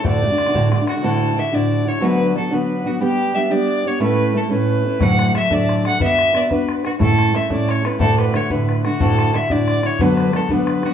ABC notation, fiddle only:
X:1
M:6/8
L:1/8
Q:3/8=120
K:D
V:1 name="Fiddle"
d4- d F | A2 e d2 c | B2 A B2 F | G2 e d2 c |
B2 A B3 | f2 e d2 f | e2 d B2 F | A2 e d c B |
A B c B2 F | A2 e d2 c | B2 A B2 F |]